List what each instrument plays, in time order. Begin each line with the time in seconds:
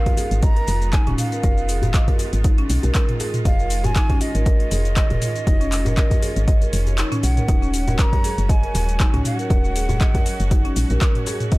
Already playing: string section D#3 G#3 B3 F4, flute F5
0.06 kick, closed hi-hat, djembe bass
0.17 marimba G#4, open hi-hat, djembe tone, shaker
0.31 fm bass G#1, closed hi-hat, shaker
0.43 marimba D#5, flute A#5, kick, closed hi-hat, djembe tone, shaker
0.56 marimba A#4, closed hi-hat
0.68 fm bass F1, open hi-hat, djembe slap, shaker
0.82 closed hi-hat, shaker
0.93 marimba D#4, flute G#5, kick, clap, closed hi-hat, shaker
1.07 fm bass D#1, marimba C#4, closed hi-hat, mid tom, djembe slap, djembe tone
1.18 flute F5, mid tom, open hi-hat, shaker
1.32 marimba A#4, closed hi-hat, shaker
1.43 fm bass F1, marimba A#4, kick, closed hi-hat, djembe tone, shaker
1.57 shaker
1.69 marimba G#4, open hi-hat, shaker
1.82 closed hi-hat, mid tom, djembe slap, djembe bass, shaker
1.94 marimba D#5, kick, clap, closed hi-hat, shaker
2.08 marimba A#4, kick, closed hi-hat, djembe bass
2.19 open hi-hat, djembe tone, shaker
2.33 fm bass G#1, closed hi-hat, shaker
2.44 marimba D#4, kick, closed hi-hat, djembe tone, shaker
2.58 marimba C#4, closed hi-hat
2.70 fm bass B1, open hi-hat, shaker
2.83 fm bass B1, marimba A#4, closed hi-hat, djembe tone, shaker
2.95 marimba A#4, kick, clap, closed hi-hat, shaker
3.09 closed hi-hat, mid tom
3.20 marimba G#4, open hi-hat, djembe slap, shaker
3.34 closed hi-hat, mid tom, shaker
3.45 fm bass F1, string section C#4, marimba D#5, flute F5, kick, closed hi-hat, djembe tone, shaker
3.59 marimba A#4, shaker
3.70 open hi-hat, shaker
3.84 flute G#5, closed hi-hat, mid tom, djembe slap, djembe bass, shaker
3.96 marimba D#4, kick, clap, closed hi-hat, shaker
4.09 marimba C#4, kick, closed hi-hat, djembe bass
4.21 flute D#5, open hi-hat, djembe tone, shaker
4.35 fm bass G#1, marimba A#4, closed hi-hat, shaker
4.46 marimba A#4, kick, closed hi-hat, djembe tone, shaker
4.60 closed hi-hat
4.71 fm bass F1, marimba G#4, open hi-hat, djembe slap, shaker
4.85 closed hi-hat, shaker
4.96 marimba D#5, kick, clap, closed hi-hat, shaker
5.10 fm bass D#1, marimba A#4, closed hi-hat, mid tom, djembe slap, djembe tone
5.22 mid tom, open hi-hat, shaker
5.36 closed hi-hat, shaker
5.47 fm bass F1, marimba D#4, kick, closed hi-hat, djembe tone, shaker
5.61 marimba C#4, closed hi-hat, shaker
5.72 clap, open hi-hat, shaker
5.85 marimba A#4, closed hi-hat, mid tom, djembe slap, djembe bass, shaker
5.97 marimba A#4, kick, clap, closed hi-hat, shaker
6.11 kick, closed hi-hat, djembe bass, shaker
6.22 marimba G#4, open hi-hat, djembe tone, shaker
6.36 fm bass G#1, closed hi-hat, shaker
6.48 marimba D#5, kick, closed hi-hat, djembe tone, shaker
6.61 marimba A#4, closed hi-hat, djembe tone, shaker
6.73 fm bass F1, open hi-hat, shaker
6.87 closed hi-hat, djembe tone, shaker
6.98 marimba D#4, clap, closed hi-hat, shaker
7.12 marimba C#4, closed hi-hat, mid tom, shaker
7.23 fm bass B1, flute F#5, open hi-hat, djembe slap, shaker
7.37 marimba A#4, closed hi-hat, mid tom, shaker
7.48 fm bass D#1, string section F#3 G#3 F#4, marimba D#4, kick, closed hi-hat, djembe tone, shaker
7.62 marimba C#4, shaker
7.74 open hi-hat, shaker
7.88 marimba A#4, closed hi-hat, mid tom, djembe slap, djembe bass, shaker
7.99 marimba A#4, flute A#5, kick, clap, closed hi-hat, shaker
8.13 kick, closed hi-hat, djembe bass
8.24 marimba G#4, open hi-hat, djembe tone, shaker
8.38 fm bass F#1, closed hi-hat, shaker
8.48 marimba D#5, flute G#5, kick, closed hi-hat, djembe tone, shaker
8.63 marimba A#4, closed hi-hat
8.75 fm bass D#1, open hi-hat, djembe slap, shaker
8.89 closed hi-hat, shaker
9.00 marimba D#4, kick, clap, closed hi-hat, shaker
9.14 fm bass C#2, marimba C#4, closed hi-hat, mid tom, djembe slap, djembe tone
9.25 flute F#5, mid tom, open hi-hat, shaker
9.39 marimba A#4, closed hi-hat, shaker
9.50 fm bass D#1, marimba A#4, kick, closed hi-hat, djembe tone, shaker
9.64 shaker
9.76 marimba G#4, open hi-hat, shaker
9.89 closed hi-hat, mid tom, djembe slap, djembe bass, shaker
10.01 marimba D#5, kick, clap, closed hi-hat, shaker
10.15 marimba A#4, kick, closed hi-hat, djembe bass
10.25 open hi-hat, djembe tone, shaker
10.40 fm bass F#1, closed hi-hat, shaker
10.51 marimba D#4, kick, closed hi-hat, djembe tone, shaker
10.65 marimba C#4, closed hi-hat
10.76 fm bass A#1, open hi-hat, shaker
10.90 fm bass A#1, marimba A#4, closed hi-hat, djembe tone, shaker
11.01 marimba A#4, kick, clap, closed hi-hat, shaker
11.15 closed hi-hat, mid tom
11.27 marimba G#4, open hi-hat, djembe slap, shaker
11.40 closed hi-hat, mid tom, shaker
11.51 fm bass D#1, marimba D#5, kick, closed hi-hat, djembe tone, shaker